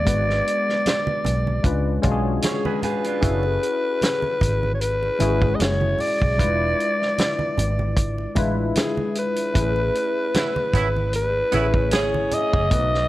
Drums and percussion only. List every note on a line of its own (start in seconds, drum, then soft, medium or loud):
0.06 kick loud
0.06 closed hi-hat medium
0.06 muted conga soft
0.06 low conga medium
0.30 snare soft
0.48 closed hi-hat soft
0.69 snare soft
0.86 snare medium
0.86 closed hi-hat medium
0.86 high conga soft
1.07 muted conga soft
1.07 high conga medium
1.25 closed hi-hat medium
1.25 low conga medium
1.47 high conga medium
1.64 kick medium
1.64 closed hi-hat medium
2.03 kick medium
2.03 closed hi-hat medium
2.03 high conga medium
2.42 snare loud
2.42 closed hi-hat medium
2.42 high conga medium
2.65 muted conga soft
2.65 high conga medium
2.83 closed hi-hat medium
2.83 low conga medium
3.04 closed hi-hat soft
3.22 kick loud
3.22 closed hi-hat medium
3.22 low conga medium
3.43 muted conga soft
3.63 closed hi-hat medium
4.01 snare loud
4.01 closed hi-hat medium
4.01 high conga soft
4.22 high conga medium
4.41 kick medium
4.41 closed hi-hat medium
4.41 low conga medium
4.63 high conga medium
4.81 closed hi-hat medium
5.03 muted conga soft
5.20 closed hi-hat medium
5.20 high conga medium
5.42 kick medium
5.60 snare loud
5.60 closed hi-hat medium
5.60 muted conga soft
5.60 high conga medium
5.81 high conga medium
5.98 open hi-hat soft
5.98 low conga medium
6.22 kick loud
6.39 kick loud
6.39 closed hi-hat medium
6.39 muted conga soft
6.39 low conga medium
6.80 closed hi-hat soft
7.02 snare soft
7.18 snare loud
7.18 closed hi-hat medium
7.18 muted conga soft
7.18 high conga soft
7.39 muted conga soft
7.39 high conga medium
7.58 closed hi-hat medium
7.58 low conga medium
7.79 high conga medium
7.97 kick medium
7.97 closed hi-hat medium
7.97 muted conga soft
8.18 muted conga soft
8.35 kick medium
8.35 closed hi-hat medium
8.35 high conga medium
8.75 snare loud
8.75 closed hi-hat medium
8.75 muted conga soft
8.75 high conga medium
8.97 high conga medium
9.15 closed hi-hat medium
9.36 closed hi-hat medium
9.55 kick loud
9.55 closed hi-hat medium
9.55 low conga medium
9.76 muted conga soft
9.95 closed hi-hat medium
10.34 snare loud
10.34 closed hi-hat medium
10.34 muted conga soft
10.34 high conga soft
10.56 muted conga soft
10.56 high conga medium
10.74 kick medium
10.74 closed hi-hat medium
10.74 low conga medium
10.96 high conga medium
11.13 closed hi-hat medium
11.13 muted conga soft
11.52 closed hi-hat medium
11.52 high conga medium
11.74 kick medium
11.91 snare loud
11.91 closed hi-hat medium
11.91 muted conga soft
11.91 high conga medium
12.14 muted conga soft
12.14 high conga medium
12.31 closed hi-hat medium
12.31 low conga medium
12.54 kick medium
12.71 kick loud
12.71 closed hi-hat medium
12.71 muted conga soft
12.71 low conga medium
12.94 snare soft